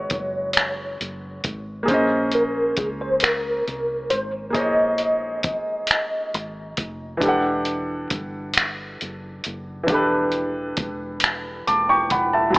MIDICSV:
0, 0, Header, 1, 5, 480
1, 0, Start_track
1, 0, Tempo, 888889
1, 1015, Time_signature, 6, 3, 24, 8
1, 6797, End_track
2, 0, Start_track
2, 0, Title_t, "Tine electric piano"
2, 0, Program_c, 0, 4
2, 0, Note_on_c, 0, 73, 85
2, 522, Note_off_c, 0, 73, 0
2, 1265, Note_on_c, 0, 70, 63
2, 1484, Note_off_c, 0, 70, 0
2, 1503, Note_on_c, 0, 68, 65
2, 1555, Note_off_c, 0, 68, 0
2, 1626, Note_on_c, 0, 72, 71
2, 1744, Note_off_c, 0, 72, 0
2, 1744, Note_on_c, 0, 70, 76
2, 2215, Note_on_c, 0, 72, 83
2, 2234, Note_off_c, 0, 70, 0
2, 2323, Note_off_c, 0, 72, 0
2, 2456, Note_on_c, 0, 75, 92
2, 3394, Note_off_c, 0, 75, 0
2, 6797, End_track
3, 0, Start_track
3, 0, Title_t, "Grand piano"
3, 0, Program_c, 1, 0
3, 0, Control_c, 1, 64, 127
3, 0, Note_on_c, 1, 56, 55
3, 0, Note_on_c, 1, 66, 50
3, 0, Note_on_c, 1, 70, 49
3, 0, Note_on_c, 1, 71, 49
3, 0, Note_on_c, 1, 73, 57
3, 983, Note_off_c, 1, 56, 0
3, 988, Note_on_c, 1, 58, 67
3, 990, Note_off_c, 1, 66, 0
3, 997, Note_off_c, 1, 70, 0
3, 1002, Note_on_c, 1, 68, 57
3, 1004, Note_off_c, 1, 71, 0
3, 1011, Note_off_c, 1, 73, 0
3, 1017, Note_on_c, 1, 72, 62
3, 1022, Control_c, 1, 64, 0
3, 1032, Note_on_c, 1, 61, 63
3, 1045, Note_on_c, 1, 75, 70
3, 1105, Control_c, 1, 64, 127
3, 2420, Note_off_c, 1, 58, 0
3, 2427, Note_off_c, 1, 68, 0
3, 2432, Note_on_c, 1, 58, 57
3, 2435, Note_off_c, 1, 72, 0
3, 2442, Note_off_c, 1, 61, 0
3, 2445, Note_on_c, 1, 68, 52
3, 2449, Note_off_c, 1, 75, 0
3, 2461, Note_on_c, 1, 72, 51
3, 2474, Note_on_c, 1, 73, 54
3, 2489, Note_on_c, 1, 75, 61
3, 3862, Note_off_c, 1, 58, 0
3, 3868, Note_off_c, 1, 68, 0
3, 3873, Note_on_c, 1, 52, 66
3, 3876, Note_off_c, 1, 72, 0
3, 3883, Note_off_c, 1, 73, 0
3, 3889, Note_on_c, 1, 62, 63
3, 3890, Note_off_c, 1, 75, 0
3, 3902, Note_on_c, 1, 67, 57
3, 3903, Control_c, 1, 64, 0
3, 3918, Note_on_c, 1, 69, 58
3, 3933, Note_on_c, 1, 78, 71
3, 3981, Control_c, 1, 64, 127
3, 5303, Note_off_c, 1, 52, 0
3, 5311, Note_off_c, 1, 62, 0
3, 5311, Note_on_c, 1, 52, 65
3, 5317, Note_off_c, 1, 67, 0
3, 5325, Note_off_c, 1, 69, 0
3, 5328, Note_on_c, 1, 62, 60
3, 5333, Note_off_c, 1, 78, 0
3, 5341, Note_on_c, 1, 67, 59
3, 5356, Note_on_c, 1, 69, 55
3, 5369, Note_on_c, 1, 71, 72
3, 6304, Note_on_c, 1, 86, 52
3, 6306, Note_on_c, 1, 81, 37
3, 6414, Note_off_c, 1, 86, 0
3, 6415, Note_off_c, 1, 81, 0
3, 6422, Note_on_c, 1, 85, 67
3, 6424, Note_on_c, 1, 79, 48
3, 6533, Note_off_c, 1, 85, 0
3, 6534, Note_off_c, 1, 79, 0
3, 6541, Note_on_c, 1, 83, 53
3, 6544, Note_on_c, 1, 78, 45
3, 6652, Note_off_c, 1, 83, 0
3, 6654, Note_off_c, 1, 78, 0
3, 6660, Note_on_c, 1, 81, 55
3, 6665, Note_on_c, 1, 76, 40
3, 6741, Note_off_c, 1, 52, 0
3, 6750, Note_off_c, 1, 62, 0
3, 6751, Note_on_c, 1, 54, 66
3, 6756, Note_off_c, 1, 67, 0
3, 6764, Note_off_c, 1, 69, 0
3, 6765, Note_on_c, 1, 64, 59
3, 6771, Note_off_c, 1, 71, 0
3, 6780, Note_on_c, 1, 80, 55
3, 6783, Control_c, 1, 64, 0
3, 6797, Note_off_c, 1, 54, 0
3, 6797, Note_off_c, 1, 64, 0
3, 6797, Note_off_c, 1, 76, 0
3, 6797, Note_off_c, 1, 80, 0
3, 6797, Note_off_c, 1, 81, 0
3, 6797, End_track
4, 0, Start_track
4, 0, Title_t, "Fingered electric bass"
4, 0, Program_c, 2, 33
4, 64, Note_on_c, 2, 30, 78
4, 518, Note_off_c, 2, 30, 0
4, 543, Note_on_c, 2, 30, 65
4, 758, Note_off_c, 2, 30, 0
4, 787, Note_on_c, 2, 32, 68
4, 999, Note_off_c, 2, 32, 0
4, 1022, Note_on_c, 2, 34, 80
4, 1477, Note_off_c, 2, 34, 0
4, 1503, Note_on_c, 2, 37, 70
4, 1958, Note_off_c, 2, 37, 0
4, 1985, Note_on_c, 2, 36, 66
4, 2199, Note_off_c, 2, 36, 0
4, 2226, Note_on_c, 2, 32, 69
4, 2460, Note_off_c, 2, 32, 0
4, 2460, Note_on_c, 2, 34, 79
4, 2945, Note_off_c, 2, 34, 0
4, 2945, Note_on_c, 2, 32, 71
4, 3398, Note_off_c, 2, 32, 0
4, 3425, Note_on_c, 2, 32, 70
4, 3638, Note_off_c, 2, 32, 0
4, 3666, Note_on_c, 2, 29, 67
4, 3879, Note_off_c, 2, 29, 0
4, 3901, Note_on_c, 2, 28, 74
4, 4356, Note_off_c, 2, 28, 0
4, 4386, Note_on_c, 2, 31, 77
4, 4839, Note_off_c, 2, 31, 0
4, 4870, Note_on_c, 2, 30, 68
4, 5081, Note_off_c, 2, 30, 0
4, 5110, Note_on_c, 2, 30, 77
4, 5321, Note_off_c, 2, 30, 0
4, 5341, Note_on_c, 2, 28, 82
4, 5797, Note_off_c, 2, 28, 0
4, 5824, Note_on_c, 2, 28, 74
4, 6278, Note_off_c, 2, 28, 0
4, 6306, Note_on_c, 2, 28, 74
4, 6519, Note_off_c, 2, 28, 0
4, 6546, Note_on_c, 2, 28, 67
4, 6780, Note_off_c, 2, 28, 0
4, 6780, Note_on_c, 2, 30, 84
4, 6797, Note_off_c, 2, 30, 0
4, 6797, End_track
5, 0, Start_track
5, 0, Title_t, "Drums"
5, 54, Note_on_c, 9, 42, 51
5, 59, Note_on_c, 9, 36, 77
5, 108, Note_off_c, 9, 42, 0
5, 113, Note_off_c, 9, 36, 0
5, 288, Note_on_c, 9, 42, 62
5, 309, Note_on_c, 9, 26, 101
5, 342, Note_off_c, 9, 42, 0
5, 363, Note_off_c, 9, 26, 0
5, 545, Note_on_c, 9, 42, 39
5, 599, Note_off_c, 9, 42, 0
5, 777, Note_on_c, 9, 42, 54
5, 781, Note_on_c, 9, 36, 80
5, 831, Note_off_c, 9, 42, 0
5, 835, Note_off_c, 9, 36, 0
5, 1016, Note_on_c, 9, 36, 92
5, 1017, Note_on_c, 9, 42, 51
5, 1070, Note_off_c, 9, 36, 0
5, 1071, Note_off_c, 9, 42, 0
5, 1250, Note_on_c, 9, 42, 44
5, 1304, Note_off_c, 9, 42, 0
5, 1494, Note_on_c, 9, 42, 55
5, 1499, Note_on_c, 9, 36, 83
5, 1548, Note_off_c, 9, 42, 0
5, 1553, Note_off_c, 9, 36, 0
5, 1728, Note_on_c, 9, 42, 61
5, 1749, Note_on_c, 9, 26, 100
5, 1782, Note_off_c, 9, 42, 0
5, 1803, Note_off_c, 9, 26, 0
5, 1985, Note_on_c, 9, 42, 38
5, 2039, Note_off_c, 9, 42, 0
5, 2216, Note_on_c, 9, 42, 47
5, 2270, Note_off_c, 9, 42, 0
5, 2454, Note_on_c, 9, 36, 81
5, 2455, Note_on_c, 9, 42, 52
5, 2508, Note_off_c, 9, 36, 0
5, 2509, Note_off_c, 9, 42, 0
5, 2690, Note_on_c, 9, 42, 38
5, 2744, Note_off_c, 9, 42, 0
5, 2933, Note_on_c, 9, 42, 57
5, 2939, Note_on_c, 9, 36, 90
5, 2987, Note_off_c, 9, 42, 0
5, 2993, Note_off_c, 9, 36, 0
5, 3170, Note_on_c, 9, 42, 66
5, 3191, Note_on_c, 9, 26, 87
5, 3224, Note_off_c, 9, 42, 0
5, 3245, Note_off_c, 9, 26, 0
5, 3425, Note_on_c, 9, 42, 43
5, 3479, Note_off_c, 9, 42, 0
5, 3656, Note_on_c, 9, 42, 52
5, 3661, Note_on_c, 9, 36, 68
5, 3710, Note_off_c, 9, 42, 0
5, 3715, Note_off_c, 9, 36, 0
5, 3896, Note_on_c, 9, 36, 85
5, 3898, Note_on_c, 9, 42, 53
5, 3950, Note_off_c, 9, 36, 0
5, 3952, Note_off_c, 9, 42, 0
5, 4132, Note_on_c, 9, 42, 41
5, 4186, Note_off_c, 9, 42, 0
5, 4376, Note_on_c, 9, 42, 59
5, 4379, Note_on_c, 9, 36, 75
5, 4430, Note_off_c, 9, 42, 0
5, 4433, Note_off_c, 9, 36, 0
5, 4609, Note_on_c, 9, 42, 64
5, 4631, Note_on_c, 9, 26, 98
5, 4663, Note_off_c, 9, 42, 0
5, 4685, Note_off_c, 9, 26, 0
5, 4865, Note_on_c, 9, 42, 37
5, 4919, Note_off_c, 9, 42, 0
5, 5097, Note_on_c, 9, 42, 51
5, 5151, Note_off_c, 9, 42, 0
5, 5336, Note_on_c, 9, 36, 91
5, 5336, Note_on_c, 9, 42, 59
5, 5390, Note_off_c, 9, 36, 0
5, 5390, Note_off_c, 9, 42, 0
5, 5571, Note_on_c, 9, 42, 41
5, 5625, Note_off_c, 9, 42, 0
5, 5815, Note_on_c, 9, 42, 55
5, 5819, Note_on_c, 9, 36, 89
5, 5869, Note_off_c, 9, 42, 0
5, 5873, Note_off_c, 9, 36, 0
5, 6048, Note_on_c, 9, 42, 68
5, 6069, Note_on_c, 9, 26, 87
5, 6102, Note_off_c, 9, 42, 0
5, 6123, Note_off_c, 9, 26, 0
5, 6304, Note_on_c, 9, 42, 45
5, 6358, Note_off_c, 9, 42, 0
5, 6536, Note_on_c, 9, 42, 51
5, 6540, Note_on_c, 9, 36, 73
5, 6590, Note_off_c, 9, 42, 0
5, 6594, Note_off_c, 9, 36, 0
5, 6774, Note_on_c, 9, 36, 86
5, 6774, Note_on_c, 9, 42, 59
5, 6797, Note_off_c, 9, 36, 0
5, 6797, Note_off_c, 9, 42, 0
5, 6797, End_track
0, 0, End_of_file